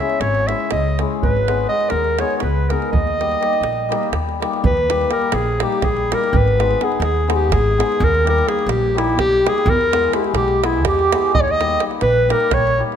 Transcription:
0.00 hammered dulcimer G#3 C#4 E4 G#4, accordion E5, clarinet E5
0.10 davul high
0.20 upright bass G#1, accordion C#5, clarinet C#5, davul high
0.35 davul high
0.47 hammered dulcimer G#3 C#4 E4 G#4, clarinet E5, accordion E5, davul high
0.60 davul high
0.71 upright bass C#2, accordion D#5, clarinet D#5, davul high
0.99 hammered dulcimer G#3 C#4 E4 G#4, davul high
1.22 upright bass G#1, accordion B4, clarinet B4, davul low
1.37 davul high
1.48 hammered dulcimer G#3 B3 D#4 G#4, davul high
1.69 hammered dulcimer G#3 B3 D#4 G#4, clarinet D#5, accordion D#5
1.81 davul high
1.89 upright bass D#2, accordion A#4, clarinet A#4, davul high
2.04 davul high
2.19 hammered dulcimer G#3 B3 D#4 G#4, accordion C#5, clarinet C#5, davul high
2.30 davul high
2.36 clarinet C#5, accordion C#5
2.40 upright bass C#2, clarinet B4, accordion B4, davul high
2.69 hammered dulcimer G#3 B3 D#4 G#4, clarinet A#4, accordion A#4, davul high
2.82 davul high
2.92 upright bass D#2, clarinet D#5, accordion D#5, davul low
3.07 davul high
3.19 hammered dulcimer G3 A#3 D#4 G4, davul high
3.31 davul high
3.40 hammered dulcimer G3 A#3 D#4 G4, davul high
3.53 davul high
3.61 upright bass A#1, davul high
3.89 hammered dulcimer G3 A#3 D#4 G4, davul high
4.03 davul high
4.12 upright bass D#2, davul high
4.29 davul high
4.40 hammered dulcimer G3 A#3 D#4 G4, davul high
4.53 davul high
4.64 upright bass D#2, clarinet B4, davul low
4.77 davul high
4.88 hammered dulcimer G3 A#3 D#4 G4, davul high
5.01 davul high
5.09 hammered dulcimer G3 A#3 D#4 G4, clarinet A#4, davul high
5.22 davul high
5.32 upright bass A#1, clarinet G#4, davul high
5.60 hammered dulcimer G3 A#3 D#4 G4, clarinet G4, davul high
5.72 davul high
5.82 upright bass A#1, clarinet G#4, davul high, davul low
5.97 davul high
6.11 hammered dulcimer G3 A#3 D#4 G4, clarinet A#4, davul high
6.24 davul high
6.33 upright bass G#1, davul low
6.37 clarinet B4
6.48 davul high
6.58 hammered dulcimer G#3 B3 D#4 G#4, davul high
6.71 davul high
6.80 hammered dulcimer G#3 B3 D#4 G#4, davul high
6.84 clarinet G#4
6.92 davul high
7.00 upright bass D#2, clarinet G#4, davul high
7.28 hammered dulcimer G#3 B3 D#4 G#4, davul high
7.35 clarinet G4
7.50 upright bass G#1, clarinet G#4, davul high, davul low
7.78 hammered dulcimer G#3 B3 D#4 G#4, davul high
7.92 davul high
8.00 upright bass D#2, clarinet A#4, davul low
8.15 davul high
8.24 hammered dulcimer G3 A#3 D#4 G4, davul high
8.29 clarinet A#4
8.38 davul high
8.45 hammered dulcimer G3 A#3 D#4 G4, clarinet G#4, davul high
8.59 davul high
8.66 upright bass A#1, clarinet G4, davul high
8.95 hammered dulcimer G3 A#3 D#4 G4, clarinet E4, davul high
9.09 davul high
9.16 upright bass B1, clarinet G4, davul high, davul low
9.33 davul high
9.44 hammered dulcimer G3 A#3 D#4 G4, davul high
9.48 clarinet G#4
9.58 davul high
9.66 upright bass E2, davul low
9.70 clarinet A#4
9.81 davul high
9.91 hammered dulcimer G#3 B3 E4 G#4, davul high
10.13 hammered dulcimer G#3 B3 E4 G#4, clarinet G4, davul high
10.19 clarinet E4
10.24 clarinet G4, davul high
10.34 upright bass B1, clarinet G4, accordion G4, davul high
10.48 davul high
10.62 hammered dulcimer G#3 B3 E4 G#4, clarinet E4, davul high
10.66 accordion E4
10.74 davul high
10.84 upright bass E2, clarinet G4, accordion G4, davul high, davul low
10.99 davul high
11.12 hammered dulcimer G#3 B3 E4 G#4, davul high
11.34 upright bass D#2, clarinet D#5, accordion D#5, davul low
11.42 accordion C#5, clarinet C#5
11.48 accordion D#5, clarinet D#5, davul high
11.60 hammered dulcimer G3 A#3 D#4 G4, davul high
11.71 davul high
11.80 hammered dulcimer G3 A#3 D#4 G4, davul high
11.91 davul high
12.01 upright bass A#1, clarinet B4, accordion B4, davul high
12.29 hammered dulcimer G3 A#3 D#4 G4, accordion A#4, clarinet A#4, davul high
12.40 davul high
12.51 upright bass A#1, accordion C#5, clarinet C#5, davul high, davul low
12.67 davul high
12.78 hammered dulcimer G3 A#3 D#4 G4
12.92 davul high

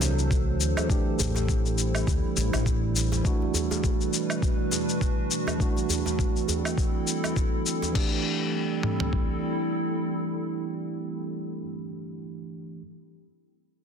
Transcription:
Already playing: fretless electric bass C2, tine electric piano E3 A3 D4 F#4, ambient pad F#3 D4 A4 C5
0.01 djembe slap, djembe tone, shaker
0.19 shaker
0.31 kick, shaker
0.60 fretless electric bass D2, shaker
0.77 djembe tone, low woodblock, shaker
0.87 tine electric piano E3 A3 D4 G4, ambient pad G3, kick, shaker
1.04 ambient pad E4
1.19 fretless electric bass A1, djembe bass, shaker
1.35 djembe slap, djembe tone, shaker
1.48 kick, shaker
1.66 shaker
1.78 shaker
1.95 low woodblock, shaker
2.07 fretless electric bass D2, kick, shaker
2.37 fretless electric bass A1, shaker
2.53 fretless electric bass A1, djembe slap, low woodblock, shaker
2.66 kick, shaker
2.96 shaker
3.12 djembe slap, djembe tone, shaker
3.23 ambient pad B2, tine electric piano E3 A3 D4 F#4, kick, shaker
3.42 djembe slap, djembe tone
3.54 ambient pad B4, djembe bass, shaker
3.71 djembe slap, djembe tone, shaker
3.84 kick, shaker
3.98 ambient pad D4, shaker
4.10 ambient pad F#4, shaker
4.30 low woodblock, shaker
4.42 kick, shaker
4.71 djembe slap, djembe tone, shaker
4.89 shaker
5.01 kick, shaker
5.31 shaker
5.47 djembe tone, low woodblock, shaker
5.58 tine electric piano E3 A3 D4, kick, shaker
5.62 tine electric piano F#4
5.77 djembe slap, shaker
5.89 ambient pad C4, djembe bass, shaker
6.06 djembe slap, djembe tone, shaker
6.10 ambient pad A4
6.19 kick, shaker
6.32 ambient pad E4
6.36 shaker
6.48 djembe bass, shaker
6.65 low woodblock, shaker
6.78 kick, shaker
7.07 shaker
7.24 djembe slap, low woodblock, shaker
7.36 kick, shaker
7.66 shaker
7.82 djembe slap, djembe tone, shaker
7.92 tine electric piano E3 A3, ambient pad G3, kick, crash
7.96 tine electric piano D4 G4
8.05 ambient pad C4
8.14 ambient pad E4
8.22 ambient pad A4
8.83 mid tom
9.00 floor tom
9.13 kick

